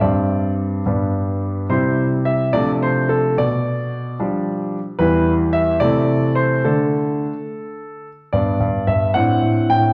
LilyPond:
<<
  \new Staff \with { instrumentName = "Grand piano" } { \time 6/8 \key g \mixolydian \tempo 4. = 72 << { d''4. r4. | c''4 e''8 d''8 c''8 a'8 | d''2~ d''8 r8 | \key g \major b'4 e''8 d''4 c''8 |
a'2~ a'8 r8 | d''4 e''8 fis''4 g''8 | } \\ { r2. | r2. | r2. | r2. |
r2. | <b d'>4. <c' d'>4. | } >> }
  \new Staff \with { instrumentName = "Grand piano" } { \clef bass \time 6/8 \key g \mixolydian <g, g c' d'>4. <g, g b d'>4. | <c g c' e'>4. <c f a d'>4. | b,4. <f g d'>4. | \key g \major <e, e g e'>4. <c e a e'>4. |
<d a d'>4. r4. | g,8 g,8 g,8 a,8 a,8 a,8 | }
>>